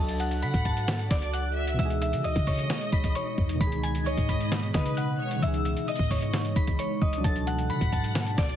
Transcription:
Already playing: 808-style bass C#2, synth keys F#3 D4, ambient pad D4 F#4 A4, synth bell A5 A6
0.00 synth keys F#4 A4
0.08 closed hi-hat
0.20 synth bell F#5 F#6, closed hi-hat
0.31 closed hi-hat
0.42 808-style bass C#3, violin section F#5, synth bell B5 B6, closed hi-hat
0.54 808-style bass G#2, kick, closed hi-hat
0.65 synth bell A5 A6, kick, closed hi-hat
0.77 closed hi-hat
0.88 snare, clap, closed hi-hat
0.99 closed hi-hat
1.11 808-style bass C#2, violin section D5, synth bell D5 D6, kick, snare, clap, closed hi-hat
1.22 closed hi-hat
1.33 synth bell F#5 F#6, closed hi-hat
1.56 violin section E5
1.67 closed hi-hat
1.74 synth keys B2 E3
1.79 808-style bass C#2, ambient pad E3 G#3 D#4, synth keys G#3 D#4, synth bell E5 E6, closed hi-hat
1.85 synth keys G#4
1.90 closed hi-hat
2.02 synth bell E5 E6, closed hi-hat
2.13 808-style bass C#3, closed hi-hat
2.24 808-style bass C#2, violin section D#5, synth bell D#5 D#6, closed hi-hat
2.36 808-style bass C#3, kick, closed hi-hat
2.47 synth bell C#5 C#6, kick, open hi-hat
2.59 closed hi-hat
2.70 snare, clap, closed hi-hat
2.81 closed hi-hat
2.92 808-style bass C#2, synth bell B5 B6, kick, closed hi-hat
3.04 kick, closed hi-hat
3.15 synth bell C#5 C#6, closed hi-hat
3.38 808-style bass E2, kick
3.49 closed hi-hat
3.55 synth keys B2 D#3
3.61 808-style bass C#2, ambient pad B2 B3, synth keys G#3 D#4, synth bell B5 B6, kick, closed hi-hat
3.67 synth keys G#4
3.72 closed hi-hat
3.83 synth bell G#5 G#6, closed hi-hat
3.95 closed hi-hat
4.06 synth bell C#5 C#6, violin section D#5, closed hi-hat
4.18 808-style bass G#2, kick, closed hi-hat
4.29 synth bell B5 B6, kick, closed hi-hat
4.40 closed hi-hat
4.52 snare, clap, closed hi-hat
4.63 closed hi-hat
4.74 808-style bass C#3, violin section B4, synth bell D#5 D#6, kick, snare, clap, closed hi-hat
4.86 closed hi-hat
4.97 synth bell F#5 F#6, closed hi-hat
5.20 violin section C#5
5.31 closed hi-hat
5.36 synth keys C#3 E3
5.42 808-style bass C#2, ambient pad E3 D#4, synth keys G#3 D#4, synth bell E5 E6, closed hi-hat
5.48 synth keys G#4
5.54 closed hi-hat
5.65 synth bell E5 E6, closed hi-hat
5.77 closed hi-hat
5.88 violin section D#5, synth bell D#5 D#6, closed hi-hat
5.96 808-style bass G#2, kick, closed hi-hat
6.03 closed hi-hat
6.11 synth bell C#5 C#6, kick, open hi-hat
6.22 closed hi-hat
6.33 snare, clap, closed hi-hat
6.45 closed hi-hat
6.56 808-style bass C#2, synth bell B5 B6, kick, closed hi-hat
6.67 kick, closed hi-hat
6.79 synth bell C#5 C#6, closed hi-hat
7.02 808-style bass C#2, synth bell D#5 D#6, kick
7.13 closed hi-hat
7.18 synth keys F#3 D4
7.24 808-style bass C#2, ambient pad D4 F#4 A4, synth keys F#4, synth bell A5 A6, kick, closed hi-hat
7.29 synth keys A4
7.36 closed hi-hat
7.47 synth bell F#5 F#6, closed hi-hat
7.58 closed hi-hat
7.70 808-style bass C#3, violin section F#5, synth bell B5 B6, closed hi-hat
7.81 808-style bass G#2, kick, closed hi-hat
7.93 synth bell A5 A6, kick, closed hi-hat
8.04 closed hi-hat
8.15 snare, clap, closed hi-hat
8.27 closed hi-hat
8.38 808-style bass C#2, violin section D5, synth bell D5 D6, kick, snare, clap, closed hi-hat
8.49 closed hi-hat

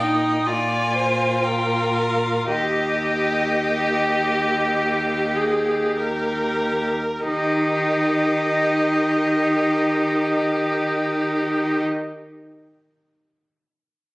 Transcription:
Already playing: cello A#2
0.00 violin D#4 G5, viola D#5
0.46 cello A#2, violin F4 G#5, viola D5
0.94 viola C5
1.43 viola A#4, violin G5
1.95 violin F5
2.49 cello D#2, viola G4, violin G4 D#5
3.62 viola G4
5.36 viola G#4
5.97 viola A#4
7.24 cello D#3, viola D#4, violin G4 D#5

